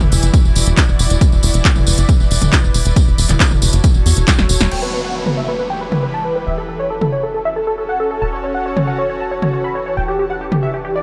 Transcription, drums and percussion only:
0.01 mid tom medium
0.01 tambourine soft
0.12 open hi-hat medium
0.12 tambourine medium
0.23 closed hi-hat medium
0.23 tambourine soft
0.34 kick loud
0.34 closed hi-hat medium
0.34 tambourine medium
0.45 tambourine soft
0.56 open hi-hat loud
0.56 tambourine medium
0.66 closed hi-hat medium
0.66 tambourine soft
0.77 kick loud
0.77 clap loud
0.77 closed hi-hat medium
0.77 tambourine medium
0.89 tambourine soft
0.99 open hi-hat medium
0.99 tambourine medium
1.10 closed hi-hat medium
1.10 tambourine soft
1.21 kick loud
1.21 closed hi-hat medium
1.21 tambourine soft
1.32 tambourine soft
1.43 open hi-hat loud
1.43 tambourine medium
1.54 closed hi-hat medium
1.54 tambourine soft
1.65 kick loud
1.65 clap loud
1.65 closed hi-hat medium
1.65 tambourine medium
1.76 mid tom medium
1.76 tambourine soft
1.87 open hi-hat medium
1.87 tambourine medium
1.98 closed hi-hat medium
2.09 kick loud
2.09 closed hi-hat medium
2.09 tambourine soft
2.20 tambourine soft
2.31 open hi-hat loud
2.31 tambourine medium
2.42 closed hi-hat medium
2.42 mid tom medium
2.42 tambourine soft
2.53 kick loud
2.53 clap loud
2.53 closed hi-hat medium
2.53 tambourine medium
2.64 tambourine soft
2.74 open hi-hat medium
2.74 tambourine medium
2.85 closed hi-hat medium
2.85 tambourine soft
2.96 kick loud
2.96 closed hi-hat medium
2.96 tambourine medium
3.08 tambourine soft
3.18 open hi-hat loud
3.18 tambourine medium
3.29 clap soft
3.29 closed hi-hat medium
3.29 mid tom medium
3.29 tambourine soft
3.40 kick loud
3.40 clap loud
3.40 closed hi-hat medium
3.40 tambourine medium
3.51 mid tom medium
3.51 tambourine soft
3.62 open hi-hat medium
3.62 tambourine medium
3.73 closed hi-hat medium
3.73 tambourine soft
3.84 kick loud
3.84 closed hi-hat medium
3.84 tambourine medium
3.94 tambourine soft
4.06 open hi-hat loud
4.06 tambourine medium
4.16 closed hi-hat medium
4.16 tambourine soft
4.27 kick loud
4.27 snare medium
4.27 clap loud
4.27 closed hi-hat medium
4.27 tambourine soft
4.38 snare medium
4.38 tambourine soft
4.49 open hi-hat medium
4.49 tambourine medium
4.61 snare medium
4.61 closed hi-hat medium
4.61 tambourine soft
4.71 crash medium
5.26 mid tom medium
5.92 mid tom medium
7.01 mid tom medium
8.77 mid tom medium
9.42 mid tom medium
10.52 mid tom medium

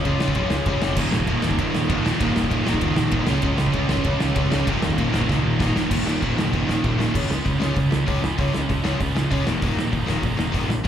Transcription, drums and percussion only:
0.05 kick medium
0.05 ride medium
0.20 snare loud
0.28 kick medium
0.35 kick loud
0.35 ride medium
0.50 snare loud
0.66 kick loud
0.66 ride medium
0.82 snare loud
0.97 kick loud
0.97 crash loud
1.12 snare loud
1.20 kick medium
1.27 kick medium
1.27 ride medium
1.42 snare loud
1.51 kick medium
1.59 kick loud
1.59 ride medium
1.75 snare loud
1.90 kick loud
1.90 ride medium
2.06 snare loud
2.20 kick loud
2.20 ride loud
2.36 snare loud
2.44 kick loud
2.51 kick medium
2.51 ride medium
2.67 snare loud
2.74 kick medium
2.81 kick loud
2.81 ride medium
2.96 snare loud
3.11 kick loud
3.11 ride medium
3.27 snare loud
3.42 kick loud
3.42 ride medium
3.58 snare loud
3.66 kick loud
3.73 kick medium
3.73 ride medium
3.89 snare loud
3.97 kick medium
4.04 kick loud
4.04 ride medium
4.20 snare loud
4.36 kick loud
4.36 ride loud
4.52 snare loud
4.67 kick loud
4.67 ride loud
4.82 snare loud
4.90 kick medium
4.98 kick medium
4.98 ride medium
5.14 snare loud
5.22 kick medium
5.29 kick loud
5.29 snare medium
5.60 kick loud
5.60 snare loud
5.76 snare loud
5.91 kick loud
5.91 crash loud
5.91 crash medium
6.07 snare loud
6.22 kick loud
6.22 crash medium
6.39 snare loud
6.53 kick loud
6.53 crash medium
6.69 snare loud
6.84 kick loud
6.84 crash medium
7.00 snare loud
7.15 kick loud
7.15 crash loud
7.31 snare loud
7.45 kick loud
7.45 open hi-hat soft
7.62 snare loud
7.76 kick loud
7.76 open hi-hat medium
7.92 snare loud
8.08 kick loud
8.08 open hi-hat medium
8.24 snare loud
8.38 kick loud
8.38 open hi-hat medium
8.54 snare loud
8.70 kick loud
8.70 open hi-hat medium
8.85 snare loud
9.00 kick loud
9.00 open hi-hat medium
9.17 snare loud
9.32 kick loud
9.32 open hi-hat medium
9.47 snare loud
9.62 kick loud
9.62 open hi-hat medium
9.79 snare loud
9.93 kick medium
9.93 open hi-hat medium
10.08 snare loud
10.23 kick loud
10.23 open hi-hat medium
10.39 snare loud
10.54 kick loud
10.54 open hi-hat medium
10.70 snare loud
10.85 open hi-hat medium

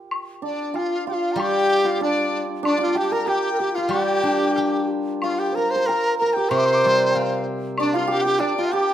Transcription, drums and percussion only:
0.11 high woodblock medium
0.76 low woodblock soft
1.40 high woodblock medium
2.02 low woodblock soft
2.65 high woodblock medium
3.28 low woodblock soft
3.91 high woodblock medium
4.56 low woodblock soft
5.22 high woodblock medium
5.88 low woodblock soft
6.51 high woodblock medium
7.15 low woodblock soft
7.78 high woodblock medium
8.40 low woodblock soft

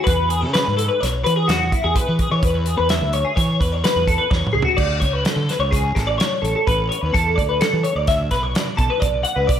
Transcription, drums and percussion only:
0.07 kick loud
0.07 closed hi-hat medium
0.30 closed hi-hat medium
0.54 snare loud
0.54 closed hi-hat medium
0.79 closed hi-hat medium
1.03 snare soft
1.03 closed hi-hat medium
1.26 closed hi-hat medium
1.49 snare loud
1.49 closed hi-hat medium
1.72 kick medium
1.72 closed hi-hat medium
1.96 kick loud
1.96 closed hi-hat medium
2.19 kick medium
2.19 closed hi-hat medium
2.43 kick loud
2.43 closed hi-hat medium
2.66 closed hi-hat medium
2.89 snare loud
2.89 closed hi-hat medium
3.13 closed hi-hat medium
3.37 kick loud
3.37 closed hi-hat medium
3.61 kick medium
3.61 closed hi-hat medium
3.84 snare loud
3.84 closed hi-hat medium
4.08 kick medium
4.08 closed hi-hat medium
4.31 kick loud
4.31 snare medium
4.47 mid tom medium
4.62 floor tom medium
4.78 kick loud
4.78 crash loud
5.02 kick medium
5.02 closed hi-hat medium
5.25 snare loud
5.25 closed hi-hat medium
5.49 snare soft
5.49 closed hi-hat medium
5.73 kick loud
5.73 closed hi-hat medium
5.96 kick medium
5.96 snare soft
5.96 closed hi-hat medium
6.20 snare loud
6.20 closed hi-hat medium
6.45 closed hi-hat medium
6.67 kick medium
6.67 closed hi-hat medium
6.92 closed hi-hat medium
7.15 kick loud
7.15 closed hi-hat medium
7.38 kick medium
7.38 closed hi-hat medium
7.61 snare loud
7.61 closed hi-hat medium
7.84 closed hi-hat medium
8.07 kick loud
8.07 snare soft
8.07 closed hi-hat medium
8.31 kick medium
8.31 snare soft
8.31 closed hi-hat medium
8.55 snare loud
8.55 closed hi-hat medium
8.78 kick medium
8.78 closed hi-hat medium
9.02 kick medium
9.02 closed hi-hat medium
9.25 closed hi-hat medium
9.49 kick loud
9.49 closed hi-hat loud

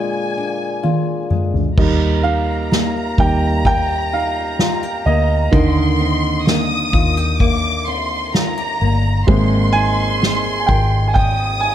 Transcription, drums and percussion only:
0.84 high tom medium
1.31 mid tom medium
1.54 floor tom medium
1.77 kick loud
1.77 crash loud
2.25 ride soft
2.71 snare loud
2.71 ride medium
3.18 kick loud
3.18 ride medium
3.65 kick loud
3.65 ride medium
4.12 ride medium
4.59 snare loud
4.59 ride medium
5.06 ride medium
5.53 kick loud
5.53 ride medium
5.99 ride soft
6.46 snare loud
6.46 ride medium
6.93 kick loud
6.93 ride medium
7.40 kick medium
7.40 ride medium
7.87 ride medium
8.34 snare loud
8.34 ride medium
8.82 ride medium
9.28 kick loud
9.28 ride medium
9.75 ride medium
10.22 snare loud
10.22 ride medium
10.69 kick medium
10.69 ride medium
11.16 kick loud
11.16 ride medium
11.63 ride medium

